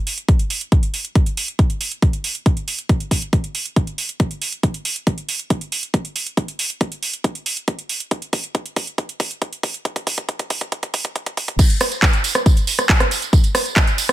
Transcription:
0.07 open hi-hat medium
0.18 closed hi-hat medium
0.29 kick loud
0.29 closed hi-hat medium
0.39 closed hi-hat medium
0.50 open hi-hat loud
0.61 closed hi-hat medium
0.72 kick loud
0.72 closed hi-hat medium
0.83 closed hi-hat medium
0.94 open hi-hat medium
1.05 closed hi-hat medium
1.15 kick loud
1.15 closed hi-hat medium
1.26 closed hi-hat medium
1.37 open hi-hat loud
1.48 closed hi-hat medium
1.59 kick loud
1.59 closed hi-hat medium
1.70 closed hi-hat medium
1.81 open hi-hat loud
1.92 closed hi-hat medium
2.02 kick loud
2.02 closed hi-hat medium
2.13 closed hi-hat medium
2.24 open hi-hat loud
2.35 closed hi-hat medium
2.46 kick loud
2.46 closed hi-hat medium
2.57 closed hi-hat medium
2.68 open hi-hat medium
2.79 closed hi-hat medium
2.89 kick loud
2.89 closed hi-hat medium
3.00 closed hi-hat medium
3.11 kick medium
3.11 open hi-hat loud
3.22 closed hi-hat medium
3.33 kick loud
3.33 closed hi-hat medium
3.44 closed hi-hat medium
3.55 open hi-hat medium
3.66 closed hi-hat medium
3.76 kick loud
3.76 closed hi-hat medium
3.87 closed hi-hat medium
3.98 open hi-hat loud
4.09 closed hi-hat medium
4.20 kick loud
4.20 closed hi-hat medium
4.31 closed hi-hat medium
4.42 open hi-hat medium
4.52 closed hi-hat medium
4.63 kick loud
4.63 closed hi-hat medium
4.74 closed hi-hat medium
4.85 open hi-hat loud
4.96 closed hi-hat medium
5.07 kick loud
5.07 closed hi-hat medium
5.18 closed hi-hat medium
5.29 open hi-hat medium
5.39 closed hi-hat medium
5.50 kick loud
5.50 closed hi-hat medium
5.61 closed hi-hat medium
5.72 open hi-hat loud
5.83 closed hi-hat medium
5.94 kick loud
5.94 closed hi-hat medium
6.05 closed hi-hat medium
6.16 open hi-hat medium
6.26 closed hi-hat medium
6.37 kick loud
6.37 closed hi-hat medium
6.48 closed hi-hat medium
6.59 open hi-hat loud
6.70 closed hi-hat medium
6.81 kick loud
6.81 closed hi-hat medium
6.92 closed hi-hat medium
7.03 open hi-hat medium
7.13 closed hi-hat medium
7.24 kick loud
7.24 closed hi-hat medium
7.35 closed hi-hat medium
7.46 open hi-hat loud
7.57 closed hi-hat medium
7.68 kick loud
7.68 closed hi-hat medium
7.79 closed hi-hat medium
7.89 open hi-hat medium
8.00 closed hi-hat medium
8.11 kick loud
8.11 closed hi-hat medium
8.22 closed hi-hat medium
8.33 kick loud
8.33 open hi-hat loud
8.44 closed hi-hat medium
8.55 kick loud
8.55 closed hi-hat medium
8.66 closed hi-hat medium
8.76 kick loud
8.76 open hi-hat medium
8.87 closed hi-hat medium
8.98 kick loud
8.98 closed hi-hat medium
9.09 closed hi-hat medium
9.20 kick loud
9.20 open hi-hat loud
9.31 closed hi-hat medium
9.42 kick loud
9.42 closed hi-hat medium
9.53 closed hi-hat medium
9.63 kick loud
9.63 open hi-hat medium
9.74 closed hi-hat medium
9.85 kick loud
9.85 closed hi-hat medium
9.96 kick medium
9.96 closed hi-hat medium
10.07 kick loud
10.07 open hi-hat loud
10.18 kick medium
10.18 closed hi-hat medium
10.29 kick loud
10.29 closed hi-hat medium
10.39 kick medium
10.39 closed hi-hat medium
10.50 kick loud
10.50 open hi-hat medium
10.61 kick medium
10.61 closed hi-hat medium
10.72 kick loud
10.72 closed hi-hat medium
10.83 kick loud
10.83 closed hi-hat medium
10.94 kick loud
10.94 open hi-hat loud
11.05 kick medium
11.05 closed hi-hat medium
11.16 kick loud
11.16 closed hi-hat medium
11.26 kick medium
11.26 closed hi-hat medium
11.37 kick loud
11.37 open hi-hat medium
11.48 kick loud
11.48 closed hi-hat medium
11.59 kick loud
11.59 closed hi-hat medium
11.59 crash loud
11.59 tambourine medium
11.70 closed hi-hat medium
11.80 cross-stick medium
11.80 open hi-hat loud
11.80 tambourine medium
11.92 closed hi-hat medium
11.92 tambourine soft
12.03 kick loud
12.03 clap loud
12.03 closed hi-hat medium
12.03 tambourine soft
12.13 closed hi-hat medium
12.13 tambourine soft
12.24 open hi-hat medium
12.24 tambourine medium
12.35 cross-stick medium
12.35 closed hi-hat medium
12.35 tambourine soft
12.46 kick loud
12.46 closed hi-hat medium
12.46 tambourine soft
12.57 closed hi-hat medium
12.57 tambourine soft
12.67 open hi-hat loud
12.67 tambourine medium
12.79 cross-stick medium
12.79 closed hi-hat medium
12.79 tambourine soft
12.89 kick loud
12.89 clap loud
12.89 closed hi-hat medium
12.89 tambourine medium
13.00 cross-stick medium
13.00 closed hi-hat medium
13.00 tambourine soft
13.11 open hi-hat medium
13.11 tambourine medium
13.22 closed hi-hat medium
13.22 tambourine soft
13.33 kick loud
13.33 closed hi-hat medium
13.33 tambourine medium
13.44 closed hi-hat medium
13.44 tambourine soft
13.55 cross-stick medium
13.55 open hi-hat loud
13.55 tambourine loud
13.66 closed hi-hat medium
13.66 tambourine soft
13.76 kick loud
13.76 clap loud
13.76 closed hi-hat medium
13.76 tambourine medium
13.87 closed hi-hat medium
13.87 tambourine soft
13.98 open hi-hat medium
13.98 tambourine loud
14.09 cross-stick medium
14.09 closed hi-hat medium
14.09 tambourine soft

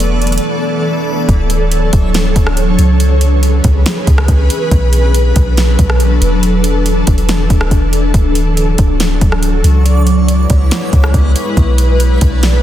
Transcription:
0.00 0.40 E1 loud
0.00 1.27 E3 medium
0.00 1.25 A3 medium
0.00 1.25 B3 medium
0.00 1.27 E4 medium
0.00 1.27 A4 medium
0.00 1.25 D5 medium
0.00 1.27 D5 medium
0.00 closed hi-hat medium
0.22 closed hi-hat soft
0.27 closed hi-hat medium
0.32 closed hi-hat medium
0.38 closed hi-hat medium
1.29 1.90 D1 loud
1.29 2.98 F#3 medium
1.29 2.98 D4 medium
1.29 2.98 A4 medium
1.29 2.98 C#5 medium
1.29 kick loud
1.29 closed hi-hat medium
1.50 closed hi-hat medium
1.72 closed hi-hat medium
1.93 2.34 D1 loud
1.93 kick loud
1.93 closed hi-hat medium
2.14 snare loud
2.14 closed hi-hat medium
2.36 2.77 D1 loud
2.36 kick medium
2.36 closed hi-hat medium
2.47 cross-stick loud
2.57 closed hi-hat medium
2.79 3.61 C#2 loud
2.79 closed hi-hat medium
3.00 4.70 E3 medium
3.00 4.70 C#4 medium
3.00 4.70 G#4 medium
3.00 8.10 B4 medium
3.00 closed hi-hat medium
3.21 closed hi-hat medium
3.43 closed hi-hat medium
3.64 3.85 C#2 loud
3.64 kick loud
3.64 closed hi-hat medium
3.86 snare loud
3.86 closed hi-hat medium
4.07 4.28 C#2 loud
4.07 kick loud
4.07 closed hi-hat medium
4.18 cross-stick loud
4.28 4.49 C#2 loud
4.28 kick medium
4.28 closed hi-hat medium
4.50 closed hi-hat medium
4.71 5.33 B1 loud
4.71 6.41 F#3 medium
4.71 9.82 D4 medium
4.71 9.82 A4 medium
4.71 kick loud
4.71 closed hi-hat medium
4.93 closed hi-hat medium
5.14 closed hi-hat medium
5.36 5.77 B1 loud
5.36 kick loud
5.36 closed hi-hat medium
5.57 snare loud
5.57 closed hi-hat medium
5.79 6.20 B1 loud
5.79 kick medium
5.79 closed hi-hat medium
5.90 cross-stick loud
6.00 closed hi-hat medium
6.21 7.04 E1 loud
6.21 closed hi-hat medium
6.43 8.13 E3 medium
6.43 closed hi-hat medium
6.64 closed hi-hat medium
6.86 closed hi-hat medium
7.07 7.48 E1 loud
7.07 kick loud
7.07 closed hi-hat medium
7.07 open hi-hat medium
7.18 closed hi-hat soft
7.29 snare loud
7.29 closed hi-hat medium
7.50 7.71 D1 loud
7.50 kick loud
7.50 closed hi-hat medium
7.61 cross-stick loud
7.71 8.12 E1 loud
7.71 kick loud
7.71 closed hi-hat medium
7.93 closed hi-hat medium
8.14 8.76 D1 loud
8.14 9.84 F#3 medium
8.14 9.84 F#4 medium
8.14 9.84 C#5 medium
8.14 9.84 D5 medium
8.14 kick loud
8.14 closed hi-hat medium
8.35 closed hi-hat medium
8.57 closed hi-hat medium
8.78 9.20 D1 loud
8.78 kick loud
8.78 closed hi-hat medium
9.00 snare loud
9.00 closed hi-hat medium
9.21 9.63 D1 loud
9.21 kick medium
9.21 closed hi-hat medium
9.32 cross-stick loud
9.43 closed hi-hat medium
9.64 10.46 C#2 loud
9.64 closed hi-hat medium
9.85 11.55 G#3 medium
9.85 11.55 B3 medium
9.85 11.55 E4 medium
9.85 12.63 B4 medium
9.85 11.55 C#5 medium
9.85 closed hi-hat medium
10.07 closed hi-hat medium
10.28 closed hi-hat medium
10.50 10.71 C#2 loud
10.50 kick loud
10.50 closed hi-hat medium
10.71 snare loud
10.71 closed hi-hat medium
10.93 11.13 C#2 loud
10.93 kick loud
10.93 closed hi-hat medium
11.04 cross-stick loud
11.14 11.35 C#2 loud
11.14 kick loud
11.14 closed hi-hat medium
11.36 closed hi-hat medium
11.57 12.19 B1 loud
11.57 12.63 A3 medium
11.57 12.63 D4 medium
11.57 12.63 F#4 medium
11.57 12.63 B4 medium
11.57 12.63 D5 medium
11.57 kick loud
11.57 closed hi-hat medium
11.78 closed hi-hat medium
12.00 closed hi-hat medium
12.21 12.63 B1 loud
12.21 kick loud
12.21 closed hi-hat medium
12.43 snare loud
12.43 closed hi-hat medium

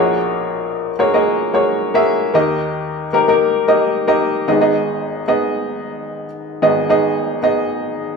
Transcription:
0.00 2.02 A#1 medium
0.00 2.03 A#2 medium
0.00 0.89 A#3 medium
0.00 0.90 F#4 medium
0.00 0.90 G#4 medium
0.00 0.90 C#5 medium
0.00 0.17 D#5 medium
0.99 1.12 A#3 medium
0.99 1.12 F#4 medium
0.99 1.12 G#4 medium
0.99 1.12 C#5 medium
1.14 1.50 A#3 medium
1.14 1.50 F#4 medium
1.14 1.50 G#4 medium
1.14 1.50 D#5 medium
1.53 1.90 A#3 medium
1.53 1.90 F#4 medium
1.53 1.90 G#4 medium
1.53 1.91 C#5 medium
1.94 2.30 A#3 medium
1.94 2.31 F#4 medium
1.94 2.31 G#4 medium
1.94 2.31 E5 loud
2.34 4.44 D#2 medium
2.34 4.44 D#3 medium
2.34 3.07 A#3 medium
2.34 3.07 D#4 medium
2.34 3.07 G4 medium
2.34 3.07 D#5 medium
3.13 3.26 A#3 medium
3.13 3.26 D#4 medium
3.13 3.26 G4 medium
3.13 3.26 A#4 medium
3.28 3.64 A#3 medium
3.28 3.64 D#4 medium
3.28 3.65 G4 medium
3.28 3.65 A#4 medium
3.68 4.04 A#3 medium
3.68 4.04 D#4 medium
3.68 4.05 G4 medium
3.68 4.05 D#5 medium
4.08 4.44 A#3 medium
4.08 4.44 D#4 medium
4.08 4.44 G4 medium
4.08 4.45 D#5 loud
4.48 6.59 G#1 medium
4.48 6.59 G#2 medium
4.48 4.59 B3 medium
4.48 4.60 D#4 medium
4.48 4.60 G#4 medium
4.48 4.60 D#5 medium
4.61 5.22 B3 medium
4.61 5.22 D#4 medium
4.61 5.22 G#4 medium
4.61 5.22 D#5 medium
5.28 6.25 B3 medium
5.28 6.25 D#4 medium
5.28 6.25 G#4 medium
5.28 6.26 D#5 medium
6.62 8.17 G#1 medium
6.62 8.17 G#2 medium
6.62 6.87 B3 medium
6.62 6.87 D#4 medium
6.62 6.87 G#4 medium
6.62 6.87 D#5 medium
6.89 7.38 B3 medium
6.89 7.38 D#4 medium
6.89 7.38 G#4 medium
6.89 7.38 D#5 medium
7.43 8.17 B3 medium
7.43 8.17 D#4 medium
7.43 8.17 G#4 medium
7.43 8.17 D#5 medium

